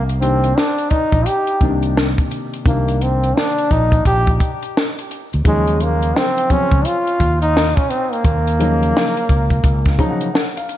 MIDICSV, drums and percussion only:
0, 0, Header, 1, 2, 480
1, 0, Start_track
1, 0, Key_signature, -3, "minor"
1, 0, Tempo, 697674
1, 1831, Time_signature, 4, 2, 24, 8
1, 7413, End_track
2, 0, Start_track
2, 0, Title_t, "Drums"
2, 64, Note_on_c, 9, 42, 51
2, 133, Note_off_c, 9, 42, 0
2, 154, Note_on_c, 9, 42, 71
2, 222, Note_off_c, 9, 42, 0
2, 301, Note_on_c, 9, 42, 50
2, 370, Note_off_c, 9, 42, 0
2, 397, Note_on_c, 9, 38, 89
2, 466, Note_off_c, 9, 38, 0
2, 540, Note_on_c, 9, 42, 52
2, 609, Note_off_c, 9, 42, 0
2, 623, Note_on_c, 9, 42, 71
2, 626, Note_on_c, 9, 36, 77
2, 692, Note_off_c, 9, 42, 0
2, 695, Note_off_c, 9, 36, 0
2, 773, Note_on_c, 9, 36, 83
2, 775, Note_on_c, 9, 42, 47
2, 842, Note_off_c, 9, 36, 0
2, 844, Note_off_c, 9, 42, 0
2, 866, Note_on_c, 9, 42, 93
2, 935, Note_off_c, 9, 42, 0
2, 1012, Note_on_c, 9, 42, 49
2, 1081, Note_off_c, 9, 42, 0
2, 1106, Note_on_c, 9, 36, 82
2, 1106, Note_on_c, 9, 42, 67
2, 1175, Note_off_c, 9, 36, 0
2, 1175, Note_off_c, 9, 42, 0
2, 1256, Note_on_c, 9, 42, 49
2, 1324, Note_off_c, 9, 42, 0
2, 1358, Note_on_c, 9, 38, 109
2, 1427, Note_off_c, 9, 38, 0
2, 1501, Note_on_c, 9, 42, 63
2, 1502, Note_on_c, 9, 36, 94
2, 1570, Note_off_c, 9, 36, 0
2, 1570, Note_off_c, 9, 42, 0
2, 1591, Note_on_c, 9, 42, 66
2, 1660, Note_off_c, 9, 42, 0
2, 1744, Note_on_c, 9, 42, 43
2, 1813, Note_off_c, 9, 42, 0
2, 1827, Note_on_c, 9, 36, 114
2, 1829, Note_on_c, 9, 42, 85
2, 1896, Note_off_c, 9, 36, 0
2, 1898, Note_off_c, 9, 42, 0
2, 1983, Note_on_c, 9, 42, 53
2, 2052, Note_off_c, 9, 42, 0
2, 2074, Note_on_c, 9, 42, 69
2, 2143, Note_off_c, 9, 42, 0
2, 2225, Note_on_c, 9, 42, 49
2, 2294, Note_off_c, 9, 42, 0
2, 2321, Note_on_c, 9, 38, 92
2, 2390, Note_off_c, 9, 38, 0
2, 2466, Note_on_c, 9, 42, 51
2, 2535, Note_off_c, 9, 42, 0
2, 2551, Note_on_c, 9, 36, 79
2, 2553, Note_on_c, 9, 42, 70
2, 2620, Note_off_c, 9, 36, 0
2, 2621, Note_off_c, 9, 42, 0
2, 2697, Note_on_c, 9, 36, 89
2, 2701, Note_on_c, 9, 42, 48
2, 2765, Note_off_c, 9, 36, 0
2, 2770, Note_off_c, 9, 42, 0
2, 2789, Note_on_c, 9, 36, 91
2, 2791, Note_on_c, 9, 42, 91
2, 2858, Note_off_c, 9, 36, 0
2, 2860, Note_off_c, 9, 42, 0
2, 2937, Note_on_c, 9, 42, 46
2, 2940, Note_on_c, 9, 36, 79
2, 3006, Note_off_c, 9, 42, 0
2, 3009, Note_off_c, 9, 36, 0
2, 3030, Note_on_c, 9, 36, 90
2, 3033, Note_on_c, 9, 42, 69
2, 3099, Note_off_c, 9, 36, 0
2, 3102, Note_off_c, 9, 42, 0
2, 3182, Note_on_c, 9, 42, 50
2, 3250, Note_off_c, 9, 42, 0
2, 3284, Note_on_c, 9, 38, 120
2, 3352, Note_off_c, 9, 38, 0
2, 3431, Note_on_c, 9, 42, 63
2, 3500, Note_off_c, 9, 42, 0
2, 3515, Note_on_c, 9, 42, 69
2, 3584, Note_off_c, 9, 42, 0
2, 3668, Note_on_c, 9, 42, 42
2, 3736, Note_off_c, 9, 42, 0
2, 3750, Note_on_c, 9, 36, 104
2, 3751, Note_on_c, 9, 42, 89
2, 3819, Note_off_c, 9, 36, 0
2, 3820, Note_off_c, 9, 42, 0
2, 3904, Note_on_c, 9, 42, 49
2, 3973, Note_off_c, 9, 42, 0
2, 3993, Note_on_c, 9, 42, 69
2, 4062, Note_off_c, 9, 42, 0
2, 4145, Note_on_c, 9, 42, 49
2, 4214, Note_off_c, 9, 42, 0
2, 4241, Note_on_c, 9, 38, 95
2, 4310, Note_off_c, 9, 38, 0
2, 4388, Note_on_c, 9, 42, 54
2, 4456, Note_off_c, 9, 42, 0
2, 4473, Note_on_c, 9, 36, 79
2, 4474, Note_on_c, 9, 42, 71
2, 4541, Note_off_c, 9, 36, 0
2, 4543, Note_off_c, 9, 42, 0
2, 4620, Note_on_c, 9, 36, 80
2, 4625, Note_on_c, 9, 42, 47
2, 4688, Note_off_c, 9, 36, 0
2, 4694, Note_off_c, 9, 42, 0
2, 4713, Note_on_c, 9, 42, 95
2, 4781, Note_off_c, 9, 42, 0
2, 4865, Note_on_c, 9, 42, 46
2, 4934, Note_off_c, 9, 42, 0
2, 4954, Note_on_c, 9, 36, 84
2, 4958, Note_on_c, 9, 42, 74
2, 5023, Note_off_c, 9, 36, 0
2, 5027, Note_off_c, 9, 42, 0
2, 5106, Note_on_c, 9, 42, 47
2, 5174, Note_off_c, 9, 42, 0
2, 5207, Note_on_c, 9, 38, 122
2, 5276, Note_off_c, 9, 38, 0
2, 5347, Note_on_c, 9, 36, 100
2, 5351, Note_on_c, 9, 42, 60
2, 5416, Note_off_c, 9, 36, 0
2, 5420, Note_off_c, 9, 42, 0
2, 5438, Note_on_c, 9, 42, 67
2, 5507, Note_off_c, 9, 42, 0
2, 5593, Note_on_c, 9, 42, 39
2, 5662, Note_off_c, 9, 42, 0
2, 5673, Note_on_c, 9, 36, 112
2, 5673, Note_on_c, 9, 42, 91
2, 5742, Note_off_c, 9, 36, 0
2, 5742, Note_off_c, 9, 42, 0
2, 5830, Note_on_c, 9, 42, 55
2, 5898, Note_off_c, 9, 42, 0
2, 5919, Note_on_c, 9, 42, 73
2, 5988, Note_off_c, 9, 42, 0
2, 6073, Note_on_c, 9, 42, 50
2, 6142, Note_off_c, 9, 42, 0
2, 6169, Note_on_c, 9, 38, 94
2, 6238, Note_off_c, 9, 38, 0
2, 6309, Note_on_c, 9, 42, 49
2, 6378, Note_off_c, 9, 42, 0
2, 6394, Note_on_c, 9, 36, 84
2, 6396, Note_on_c, 9, 42, 71
2, 6462, Note_off_c, 9, 36, 0
2, 6465, Note_off_c, 9, 42, 0
2, 6539, Note_on_c, 9, 36, 84
2, 6544, Note_on_c, 9, 42, 51
2, 6608, Note_off_c, 9, 36, 0
2, 6613, Note_off_c, 9, 42, 0
2, 6631, Note_on_c, 9, 36, 98
2, 6633, Note_on_c, 9, 42, 87
2, 6700, Note_off_c, 9, 36, 0
2, 6702, Note_off_c, 9, 42, 0
2, 6780, Note_on_c, 9, 42, 48
2, 6783, Note_on_c, 9, 36, 84
2, 6792, Note_on_c, 9, 38, 30
2, 6849, Note_off_c, 9, 42, 0
2, 6851, Note_off_c, 9, 36, 0
2, 6860, Note_off_c, 9, 38, 0
2, 6872, Note_on_c, 9, 36, 90
2, 6876, Note_on_c, 9, 42, 69
2, 6941, Note_off_c, 9, 36, 0
2, 6945, Note_off_c, 9, 42, 0
2, 7022, Note_on_c, 9, 42, 49
2, 7091, Note_off_c, 9, 42, 0
2, 7122, Note_on_c, 9, 38, 107
2, 7191, Note_off_c, 9, 38, 0
2, 7273, Note_on_c, 9, 42, 64
2, 7342, Note_off_c, 9, 42, 0
2, 7355, Note_on_c, 9, 42, 62
2, 7413, Note_off_c, 9, 42, 0
2, 7413, End_track
0, 0, End_of_file